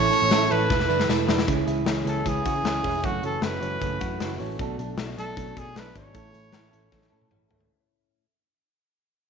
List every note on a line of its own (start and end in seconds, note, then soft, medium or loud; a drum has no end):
0.00 0.12 A2 medium
0.00 0.12 E3 medium
0.00 0.12 A3 medium
0.00 0.12 C#4 medium
0.00 0.11 E4 medium
0.00 0.53 C#5 loud
0.00 0.70 C#5 medium
0.00 0.69 E5 medium
0.00 1.47 A5 medium
0.00 0.68 E6 medium
0.11 0.30 A3 soft
0.11 0.31 C#4 medium
0.11 0.31 E4 medium
0.11 0.31 A4 medium
0.11 ride medium
0.22 0.30 A1 loud
0.31 0.48 A1 loud
0.31 0.51 A2 medium
0.31 0.51 E3 medium
0.31 0.51 A3 medium
0.31 0.50 C#4 medium
0.31 0.49 E4 loud
0.31 0.48 A4 loud
0.31 snare loud
0.31 ride medium
0.31 tambourine medium
0.49 0.67 A1 loud
0.49 0.69 A3 soft
0.49 0.70 C#4 medium
0.49 0.70 E4 medium
0.49 0.70 A4 medium
0.49 1.10 B4 loud
0.49 ride medium
0.49 tambourine medium
0.69 0.86 E1 loud
0.69 0.89 E3 soft
0.69 0.90 A3 medium
0.69 0.89 E4 medium
0.69 1.46 B4 medium
0.69 0.87 B4 medium
0.69 1.47 E5 medium
0.69 1.47 E6 medium
0.69 kick loud
0.69 snare medium
0.69 tambourine medium
0.80 snare medium
0.89 1.05 F#1 medium
0.89 1.08 A3 soft
0.89 1.00 D4 medium
0.89 1.09 E4 soft
0.89 1.09 B4 medium
0.89 tambourine medium
1.00 1.29 E4 soft
1.00 snare medium
1.08 1.25 E1 loud
1.08 1.28 E3 medium
1.08 1.29 A3 medium
1.08 1.28 E4 medium
1.08 1.26 B4 medium
1.08 snare medium
1.08 tambourine loud
1.27 1.44 E1 loud
1.27 1.47 A3 soft
1.27 1.39 D4 medium
1.27 1.47 E4 medium
1.27 1.47 B4 medium
1.27 snare loud
1.27 tambourine soft
1.38 1.52 E4 medium
1.38 snare loud
1.47 1.64 C#2 medium
1.47 1.67 C#3 medium
1.47 1.67 E3 medium
1.47 1.67 C#4 medium
1.47 1.66 E4 medium
1.47 1.65 G#4 medium
1.47 kick loud
1.47 closed hi-hat medium
1.66 1.83 C#2 medium
1.66 1.85 C#4 soft
1.66 1.86 E4 medium
1.66 1.86 G#4 medium
1.66 closed hi-hat medium
1.85 2.02 C#2 loud
1.85 2.05 E3 medium
1.85 2.06 C#4 medium
1.85 2.05 E4 medium
1.85 2.03 G#4 medium
1.85 snare loud
1.85 closed hi-hat medium
2.04 2.22 C#2 medium
2.04 2.24 C#4 soft
2.04 2.25 E4 soft
2.04 2.25 G#4 medium
2.04 closed hi-hat medium
2.08 2.29 A4 medium
2.24 2.42 C#2 medium
2.24 2.44 C#3 medium
2.24 2.45 E3 medium
2.24 2.45 C#4 medium
2.24 2.45 E4 medium
2.24 2.43 G#4 medium
2.24 3.07 G#4 medium
2.24 kick medium
2.24 closed hi-hat medium
2.44 2.61 C#3 medium
2.44 2.64 C#4 soft
2.44 2.65 E4 soft
2.44 2.56 F#4 medium
2.44 2.64 G#4 soft
2.44 kick medium
2.44 closed hi-hat medium
2.56 3.08 G#4 soft
2.64 2.80 C#2 medium
2.64 2.84 E3 medium
2.64 2.85 C#4 medium
2.64 2.84 E4 medium
2.64 2.82 G#4 medium
2.64 snare medium
2.64 closed hi-hat medium
2.84 3.00 E1 medium
2.84 3.03 C#4 medium
2.84 3.04 E4 medium
2.84 3.03 G#4 medium
2.84 kick medium
2.84 open hi-hat medium
3.03 3.20 F#1 loud
3.03 3.23 F#2 medium
3.03 3.23 C#3 medium
3.03 3.23 E3 medium
3.03 3.23 A3 medium
3.03 3.22 C#4 medium
3.03 3.21 F#4 medium
3.03 3.24 F#4 medium
3.03 kick loud
3.03 closed hi-hat medium
3.22 3.38 F#1 medium
3.22 3.40 E3 soft
3.22 3.40 A3 soft
3.22 3.42 C#4 soft
3.22 3.42 F#4 medium
3.22 3.42 A4 medium
3.22 closed hi-hat medium
3.41 3.58 F#1 loud
3.41 3.61 E3 medium
3.41 3.62 A3 medium
3.41 3.60 C#4 medium
3.41 3.59 F#4 medium
3.41 4.36 B4 medium
3.41 snare loud
3.41 closed hi-hat medium
3.60 3.77 F#1 medium
3.60 3.80 E3 soft
3.60 3.80 A3 soft
3.60 3.80 C#4 soft
3.60 3.81 F#4 soft
3.60 closed hi-hat medium
3.80 3.97 F#1 loud
3.80 4.00 F#2 medium
3.80 4.00 C#3 medium
3.80 4.01 E3 medium
3.80 4.01 A3 medium
3.80 4.00 C#4 medium
3.80 3.98 F#4 medium
3.80 kick medium
3.80 closed hi-hat medium
3.99 4.17 F#2 medium
3.99 4.18 E3 soft
3.99 4.19 A3 soft
3.99 4.20 C#4 soft
3.99 4.20 F#4 soft
3.99 kick medium
3.99 closed hi-hat medium
4.19 4.36 F#1 medium
4.19 4.39 E3 medium
4.19 4.39 A3 medium
4.19 4.38 C#4 medium
4.19 4.37 F#4 medium
4.19 snare medium
4.19 closed hi-hat medium
4.38 4.56 A1 medium
4.38 4.59 E3 soft
4.38 4.59 A3 medium
4.38 4.59 C#4 soft
4.38 4.59 F#4 medium
4.38 open hi-hat medium
4.59 4.75 B1 medium
4.59 4.79 B2 medium
4.59 4.79 F#3 medium
4.59 4.79 A3 medium
4.59 4.78 D4 medium
4.59 4.77 A4 medium
4.59 kick medium
4.59 closed hi-hat medium
4.78 4.95 B1 medium
4.78 4.97 A3 soft
4.78 4.98 D4 medium
4.78 4.98 A4 medium
4.78 closed hi-hat medium
4.97 5.14 B1 medium
4.97 5.17 F#3 medium
4.97 5.18 A3 medium
4.97 5.17 D4 medium
4.97 5.15 A4 medium
4.97 snare loud
4.97 closed hi-hat medium
5.17 5.34 B1 medium
5.17 5.36 A3 soft
5.17 5.36 D4 soft
5.17 5.37 A4 soft
5.17 5.60 A4 medium
5.17 closed hi-hat medium
5.36 5.53 B1 loud
5.36 5.56 B2 medium
5.36 5.56 F#3 medium
5.36 5.57 A3 medium
5.36 5.56 D4 medium
5.36 5.54 A4 medium
5.36 kick medium
5.36 closed hi-hat medium
5.56 5.73 B2 medium
5.56 5.74 A3 soft
5.56 5.75 D4 soft
5.56 5.80 G#4 medium
5.56 5.75 A4 soft
5.56 kick medium
5.56 closed hi-hat medium
5.74 5.92 B1 medium
5.74 5.94 F#3 medium
5.74 5.95 A3 medium
5.74 5.94 D4 medium
5.74 5.93 A4 medium
5.74 snare medium
5.74 closed hi-hat medium
5.79 5.97 B4 medium
5.94 6.11 G#1 medium
5.94 6.13 A3 soft
5.94 6.15 D4 soft
5.94 6.14 A4 soft
5.94 7.29 C#5 medium
5.94 kick medium
5.94 closed hi-hat medium
6.13 6.31 A1 medium
6.13 6.33 A2 medium
6.13 6.33 E3 medium
6.13 6.34 A3 medium
6.13 6.33 C#4 medium
6.13 6.32 E4 medium
6.13 6.31 A4 medium
6.13 kick loud
6.13 closed hi-hat medium
6.32 6.50 A1 medium
6.32 6.51 A3 soft
6.32 6.51 C#4 soft
6.32 6.52 E4 soft
6.32 6.53 A4 soft
6.32 closed hi-hat medium
6.52 6.70 A1 medium
6.52 6.72 A3 medium
6.52 6.72 C#4 medium
6.52 6.71 E4 medium
6.52 6.69 A4 medium
6.52 snare medium
6.52 closed hi-hat medium
6.71 6.89 A1 medium
6.71 6.91 A3 soft
6.71 6.91 C#4 soft
6.71 6.91 E4 soft
6.71 6.91 A4 medium
6.71 closed hi-hat medium
6.91 7.08 A1 medium
6.91 7.11 A2 medium
6.91 7.11 E3 medium
6.91 7.11 A3 medium
6.91 7.11 C#4 medium
6.91 7.09 E4 medium
6.91 7.08 A4 medium
6.91 kick medium
6.91 snare soft
7.02 snare soft
7.10 7.28 A2 medium
7.10 7.28 A3 soft
7.10 7.29 C#4 soft
7.10 7.31 E4 soft
7.10 7.30 A4 soft
7.21 high tom medium
7.30 7.48 A1 medium
7.30 7.50 A3 medium
7.30 7.50 C#4 medium
7.30 7.49 E4 medium
7.30 7.47 A4 medium
7.30 mid tom medium
7.49 7.67 G#1 medium
7.49 7.71 A3 soft
7.49 7.71 C#4 soft
7.49 7.70 E4 medium
7.49 7.69 A4 soft
7.49 floor tom medium
7.60 floor tom medium